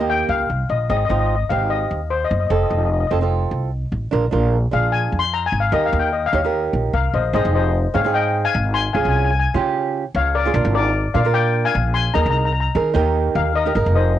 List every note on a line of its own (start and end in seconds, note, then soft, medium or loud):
0.00 0.21 D#2 medium
0.00 0.47 A#3 medium
0.00 0.47 D#4 medium
0.00 0.48 G4 medium
0.10 0.30 G5 loud
0.29 0.47 C#2 medium
0.29 0.67 F5 medium
0.50 0.68 C2 medium
0.69 0.87 A#1 medium
0.69 0.89 D#5 medium
0.90 1.06 G#1 medium
0.90 1.02 C4 medium
0.90 1.03 D#4 medium
0.90 1.03 G#4 medium
0.90 0.96 D#5 medium
0.97 1.04 D#5 medium
1.05 1.34 C4 medium
1.05 1.10 D#5 medium
1.10 1.43 G#1 medium
1.10 1.34 D#4 medium
1.10 1.35 F4 medium
1.10 1.18 D#5 medium
1.19 1.25 D#5 medium
1.26 1.34 D#5 medium
1.35 1.43 D#5 medium
1.49 1.83 G#1 medium
1.49 1.99 C4 medium
1.49 1.99 D#4 medium
1.49 2.00 G4 medium
1.49 1.70 F5 medium
1.70 2.12 D#5 medium
1.91 2.23 D#2 medium
2.10 2.23 C5 medium
2.25 2.31 D#5 medium
2.31 2.47 F#1 medium
2.31 2.39 D#5 medium
2.40 2.46 D#5 medium
2.47 2.67 F1 medium
2.47 2.87 C4 medium
2.47 2.87 F4 medium
2.47 2.54 D#5 medium
2.51 2.88 A4 medium
2.51 2.62 D#5 medium
2.63 2.69 D#5 soft
2.70 3.04 F1 medium
2.70 2.77 D#5 medium
2.78 2.84 D#5 soft
2.85 2.91 D#5 medium
2.93 2.99 D#5 soft
3.00 3.06 D#5 medium
3.07 3.44 F1 medium
3.07 3.17 C4 medium
3.07 3.18 F4 medium
3.07 3.14 D#5 medium
3.12 3.18 A4 medium
3.21 3.69 C4 medium
3.21 3.70 F4 medium
3.21 3.70 A4 medium
3.51 3.84 C2 medium
3.92 4.08 A1 medium
4.11 4.29 A#1 medium
4.11 4.24 D4 medium
4.11 4.25 F4 medium
4.11 4.25 A#4 medium
4.31 4.65 A#1 medium
4.31 4.56 D4 medium
4.31 4.57 F4 medium
4.31 4.57 A#4 loud
4.71 5.06 A#1 medium
4.71 5.21 D4 medium
4.71 5.21 F4 medium
4.71 5.21 G#4 medium
4.71 4.93 F5 medium
4.92 5.20 G#5 loud
5.12 5.45 F2 medium
5.19 5.33 C6 loud
5.34 5.46 A#5 medium
5.46 5.52 G#5 loud
5.52 5.69 G#1 medium
5.60 5.72 F5 medium
5.72 5.89 D#2 loud
5.72 6.09 D#4 medium
5.72 6.09 G4 medium
5.72 6.10 A#4 medium
5.72 5.79 D#5 medium
5.86 6.00 F5 medium
5.93 6.26 D#2 loud
5.99 6.13 G5 medium
6.13 6.25 D#5 medium
6.26 6.64 F5 medium
6.33 6.66 D#2 medium
6.33 6.39 D#4 medium
6.33 6.40 G4 medium
6.33 6.40 C#5 medium
6.44 6.92 D#4 medium
6.44 6.92 G4 medium
6.44 6.93 A#4 medium
6.73 6.90 A#1 medium
6.93 7.12 C2 medium
6.93 7.12 A#4 medium
6.93 7.14 F5 medium
7.13 7.32 A#1 medium
7.13 7.33 C5 medium
7.13 7.33 D#5 medium
7.33 7.42 G#1 loud
7.33 7.70 C4 medium
7.33 7.71 D#4 medium
7.33 7.71 G#4 medium
7.33 7.53 C5 medium
7.33 7.54 D#5 medium
7.45 7.85 F1 medium
7.55 7.92 C5 medium
7.55 7.92 D#5 medium
7.94 8.44 G#2 medium
7.94 8.00 C4 medium
7.94 8.01 D#4 medium
7.94 8.01 G#4 medium
7.94 8.13 C#5 medium
7.94 8.13 F5 medium
8.04 8.52 C4 medium
8.04 8.53 D#4 medium
8.04 8.53 G#4 medium
8.14 8.43 D#5 medium
8.14 8.46 G5 medium
8.45 8.72 F5 medium
8.45 8.73 G#5 loud
8.55 8.87 G#1 loud
8.74 8.92 G#5 medium
8.74 8.93 C6 loud
8.93 9.03 C#2 loud
8.93 9.31 C#4 medium
8.93 9.31 F4 medium
8.93 9.31 G#4 medium
8.93 9.02 F5 medium
8.93 9.01 G#5 medium
9.02 9.46 C2 medium
9.02 9.08 G#5 medium
9.09 9.16 G#5 medium
9.17 9.23 G#5 medium
9.25 9.30 G#5 medium
9.31 9.38 G#5 medium
9.39 9.47 G#5 medium
9.54 10.04 C#3 medium
9.54 10.03 C#4 medium
9.54 10.03 F4 medium
9.54 10.04 G4 medium
10.15 10.47 C#2 loud
10.15 10.34 C#5 medium
10.15 10.34 F5 medium
10.35 10.72 A#4 medium
10.35 10.72 D5 medium
10.45 10.51 C#4 medium
10.45 10.51 F4 medium
10.45 10.52 G#4 medium
10.54 10.63 A#1 loud
10.54 10.91 D4 medium
10.54 10.91 F4 medium
10.54 10.92 A#4 medium
10.65 11.05 G#1 loud
10.75 11.12 A#4 medium
10.75 11.13 D5 medium
11.14 11.64 A#2 medium
11.14 11.21 D4 medium
11.14 11.21 F4 medium
11.14 11.22 A#4 medium
11.14 11.33 D5 medium
11.14 11.35 F5 medium
11.25 11.73 D4 medium
11.25 11.73 F4 medium
11.25 11.73 A#4 medium
11.34 11.63 D5 medium
11.34 11.66 G5 loud
11.65 11.93 F5 medium
11.65 11.93 G#5 loud
11.75 12.08 A#1 loud
11.94 12.13 G#5 medium
11.94 12.13 C6 loud
12.14 12.24 D#2 medium
12.14 12.51 D#4 medium
12.14 12.51 G#4 medium
12.14 12.51 A#4 medium
12.14 12.22 D#5 medium
12.14 12.21 A#5 loud
12.22 12.66 C2 medium
12.22 12.29 A#5 medium
12.30 12.37 A#5 medium
12.38 12.44 A#5 medium
12.45 12.51 A#5 medium
12.53 12.59 A#5 medium
12.60 12.67 A#5 medium
12.75 12.91 D#3 medium
12.75 12.92 D#4 medium
12.75 12.94 G#4 medium
12.75 12.95 A#4 medium
12.94 13.28 D#2 loud
12.94 13.51 D#4 medium
12.94 13.51 G4 medium
12.94 13.52 A#4 loud
13.35 13.68 D#2 loud
13.35 13.45 A#4 medium
13.35 13.45 F5 medium
13.55 13.93 A#4 medium
13.55 13.94 D#5 medium
13.65 13.71 D#4 medium
13.65 13.72 G4 medium
13.65 13.72 A#4 medium
13.75 13.84 G#1 medium
13.75 14.11 D#4 medium
13.75 14.12 G#4 medium
13.75 14.12 A#4 medium
13.86 14.19 F1 medium
13.95 14.19 C5 medium
13.95 14.19 D#5 medium